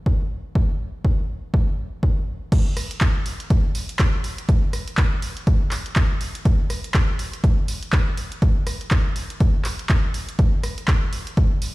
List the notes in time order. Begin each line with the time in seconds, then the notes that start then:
0.06 kick
0.55 kick
1.05 kick
1.54 kick
2.03 kick
2.52 kick, closed hi-hat, crash
2.77 cross-stick, open hi-hat
2.91 closed hi-hat
3.01 kick, clap, closed hi-hat
3.26 open hi-hat
3.40 closed hi-hat
3.50 kick, closed hi-hat
3.75 open hi-hat
3.89 closed hi-hat
3.99 kick, clap, closed hi-hat
4.24 open hi-hat
4.38 closed hi-hat
4.49 kick, closed hi-hat
4.73 cross-stick, open hi-hat
4.88 closed hi-hat
4.97 kick, clap, closed hi-hat
5.22 open hi-hat
5.37 closed hi-hat
5.47 kick, closed hi-hat
5.71 clap, open hi-hat
5.86 closed hi-hat
5.96 kick, clap, closed hi-hat
6.21 open hi-hat
6.35 closed hi-hat
6.45 kick, closed hi-hat
6.70 cross-stick, open hi-hat
6.84 closed hi-hat
6.94 kick, clap, closed hi-hat
7.19 open hi-hat
7.33 closed hi-hat
7.44 kick, closed hi-hat
7.68 open hi-hat
7.83 closed hi-hat
7.92 kick, clap, closed hi-hat
8.17 open hi-hat
8.32 closed hi-hat
8.42 kick, closed hi-hat
8.67 cross-stick, open hi-hat
8.81 closed hi-hat
8.91 kick, clap, closed hi-hat
9.16 open hi-hat
9.30 closed hi-hat
9.40 kick, closed hi-hat
9.65 clap, open hi-hat
9.79 closed hi-hat
9.89 kick, clap, closed hi-hat
10.14 open hi-hat
10.29 closed hi-hat
10.39 kick, closed hi-hat
10.63 cross-stick, open hi-hat
10.78 closed hi-hat
10.88 kick, clap, closed hi-hat
11.13 open hi-hat
11.27 closed hi-hat
11.37 kick, closed hi-hat
11.62 open hi-hat